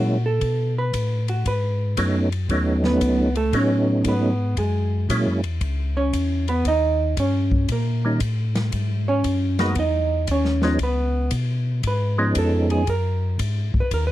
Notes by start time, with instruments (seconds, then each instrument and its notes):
Already playing: tonewheel organ A#2 F#3 G#3 A#3 C#4 E4, hollow-body jazz guitar F#4 A#4
0.26 hollow-body jazz guitar A4
0.41 tonewheel organ B2, kick, ride
0.78 hollow-body jazz guitar B4
0.93 tonewheel organ A2, kick, hi-hat pedal, ride
1.28 hollow-body jazz guitar F#4, ride
1.46 tonewheel organ G#2, hollow-body jazz guitar B4, kick, ride
1.97 tonewheel organ F#2 F#3 A3 B3 C#4 D#4, kick, hi-hat pedal, ride
2.32 ride
2.49 tonewheel organ D#2 F#3 A3 B3 C#4 D#4, kick, ride
2.84 hollow-body jazz guitar B3 B4, snare
3.01 tonewheel organ C#2, kick, hi-hat pedal, ride
3.35 hollow-body jazz guitar A3 A4, ride
3.53 tonewheel organ A2 F#3 A3 B3 C#4 D#4, hollow-body jazz guitar C#4 C#5, kick, ride
4.04 tonewheel organ G#2, hollow-body jazz guitar B3, kick, hi-hat pedal, ride
4.09 hollow-body jazz guitar B4
4.57 tonewheel organ F#2, hollow-body jazz guitar G#3 G#4, kick, ride
5.09 tonewheel organ A#2 F#3 G#3 A#3 C#4 E4, kick, hi-hat pedal, ride
5.26 tonewheel organ F#2
5.44 tonewheel organ E2, ride
5.61 tonewheel organ C#2, kick, ride
5.97 hollow-body jazz guitar C#4 C#5
6.13 tonewheel organ E2, kick, hi-hat pedal, ride
6.48 hollow-body jazz guitar B3 B4, ride
6.65 tonewheel organ D#2, hollow-body jazz guitar D#4 D#5, kick, ride
7.17 tonewheel organ G2, hollow-body jazz guitar C#4 C#5, kick, hi-hat pedal, ride
7.51 kick
7.68 tonewheel organ A#2, hollow-body jazz guitar A#3 A#4, kick, ride
8.05 tonewheel organ D#3 G3 A#3 C#4 D#4
8.20 tonewheel organ A2, kick, hi-hat pedal, ride
8.55 snare, ride
8.72 tonewheel organ G#2, kick, ride
9.08 hollow-body jazz guitar C#4 C#5
9.24 tonewheel organ F#2, kick, hi-hat pedal, ride
9.59 tonewheel organ F#3 G#3 A#3 B3 D#4, hollow-body jazz guitar B3 B4, snare, ride
9.75 tonewheel organ E2, hollow-body jazz guitar D#4, kick, ride
9.80 hollow-body jazz guitar D#5
10.27 tonewheel organ D#2, kick, hi-hat pedal, ride
10.31 hollow-body jazz guitar C#4 C#5
10.45 snare
10.62 tonewheel organ F3 G#3 B3 C#4 D#4, snare
10.79 tonewheel organ C#2, kick, ride
10.83 hollow-body jazz guitar B3 B4
11.31 tonewheel organ B2, kick, hi-hat pedal, ride
11.83 tonewheel organ G#2, kick, ride
11.87 hollow-body jazz guitar B4
12.18 tonewheel organ F3 G#3 B3 C#4 D#4
12.35 tonewheel organ F2, hollow-body jazz guitar A4, kick, hi-hat pedal, ride
12.70 hollow-body jazz guitar G#4, ride
12.87 tonewheel organ F#2, hollow-body jazz guitar A#4, kick, ride
13.39 tonewheel organ G#2, kick, hi-hat pedal, ride
13.74 tonewheel organ G#2, kick
13.80 hollow-body jazz guitar B4
13.91 tonewheel organ D#2, hollow-body jazz guitar A#4, kick, ride
14.07 hollow-body jazz guitar B4